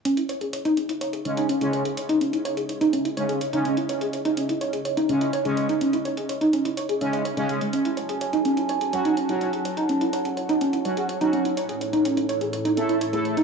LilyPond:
<<
  \new Staff \with { instrumentName = "Analog synth pad" } { \time 4/4 \key cis \minor \tempo 4 = 125 << { <cis' gis' e''>1~ | <cis' gis' e''>1~ | <cis' gis' e''>1~ | <cis' gis' e''>1 |
<fis' cis'' a''>1~ | <fis' cis'' a''>1 | <a e'>1 | } \\ { dis''1~ | dis''1~ | dis''1~ | dis''1 |
gis''1 | fis''1 | a'1 | } >> }
  \new Staff \with { instrumentName = "Synth pluck" } { \time 4/4 \key cis \minor cis'16 e'16 cis''16 gis'16 cis''16 dis'16 cis'16 e'16 cis''16 gis'16 cis''16 dis'16 cis'16 e'16 cis''16 gis'16 | cis''16 dis'16 cis'16 e'16 cis''16 gis'16 cis''16 dis'16 cis'16 e'16 cis''16 gis'16 cis''16 dis'16 cis'16 e'16 | cis''16 gis'16 cis''16 dis'16 cis'16 e'16 cis''16 gis'16 cis''16 dis'16 cis'16 e'16 cis''16 gis'16 cis''16 dis'16 | cis'16 e'16 cis''16 gis'16 cis''16 dis'16 cis'16 e'16 cis''16 gis'16 e''16 e''16 cis''16 gis'16 gis'16 gis16 |
cis'16 e'16 cis''16 gis'16 cis''16 dis'16 cis'16 e'16 cis''16 gis'16 cis''16 dis'16 cis'16 e'16 cis''16 gis'16 | cis''16 dis'16 cis'16 e'16 cis''16 gis'16 cis''16 dis'16 cis'16 e'16 cis''16 gis'16 cis''16 dis'16 cis'16 e'16 | cis''16 gis'16 cis''16 dis'16 cis'16 e'16 cis''16 gis'16 cis''16 dis'16 cis'16 e'16 cis''16 gis'16 cis''16 dis'16 | }
  \new Staff \with { instrumentName = "Analog polysynth" } { \time 4/4 \key cis \minor r2 r8 <cis gis cis'>8 r16 <cis gis cis'>8 r16 | r2 r8 <cis gis cis'>8 r16 <cis gis cis'>8 r16 | r2 r8 <cis gis cis'>8 r16 <cis gis cis'>8 r16 | r2 r8 <cis gis cis'>8 r16 <cis gis cis'>8 r16 |
r2 r8 <fis cis' fis'>8 r16 <fis cis' fis'>8 r16 | r2 r8 <fis cis' fis'>8 r16 <fis cis' fis'>8 r16 | r2 r8 <a e' a'>8 r16 <a e' a'>8 r16 | }
  \new DrumStaff \with { instrumentName = "Drums" } \drummode { \time 4/4 hh16 hh16 hh16 hh16 hh16 hh16 hh16 hh16 hh16 hh16 hh16 hh16 hh16 hh16 hh16 hh16 | hh16 hh16 hh16 hh16 hh16 hh16 hh16 hh16 hh16 hh16 hh16 hh16 hh16 hh16 hh16 hh16 | hh16 hh16 hh16 hh16 hh16 hh16 hh16 hh16 hh16 hh16 hh16 hh16 hh16 hh16 hh16 hh16 | hh16 hh16 hh16 hh16 hh16 hh16 hh16 hh16 hh16 hh16 hh16 hh16 hh16 hh16 hh16 hh16 |
hh16 hh16 hh16 hh16 hh16 hh16 hh16 hh16 hh16 hh16 hh16 hh16 hh16 hh16 hh16 hh16 | hh16 hh16 hh16 hh16 hh16 hh16 hh16 hh16 hh16 hh16 hh16 hh16 hh16 hh16 hh16 hh16 | hh16 hh16 hh16 hh16 hh16 hh16 hh16 hh16 hh16 hh16 hh16 hh16 hh16 hh16 hh16 hh16 | }
>>